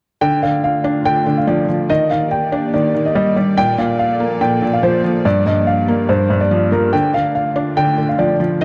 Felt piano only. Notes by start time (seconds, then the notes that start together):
0.22 D3
0.43 D3
0.84 D4
1.06 D3
1.26 D3
1.47 F3
1.68 F3
1.89 D#3
2.11 D#3
2.52 D4
2.73 D#3
2.94 D#3
3.15 G3
3.36 G3
3.57 A#2
3.78 A#2
4.20 A#3
4.41 A#2
4.62 A#2
4.83 F3
5.04 F3
5.25 G2
5.46 G2
5.88 A#3
6.09 G2
6.30 G2
6.51 F3
6.72 F3
6.93 D3
7.14 D3
7.56 D4
7.77 D3
7.98 D3
8.19 F3
8.40 F3
8.61 D#3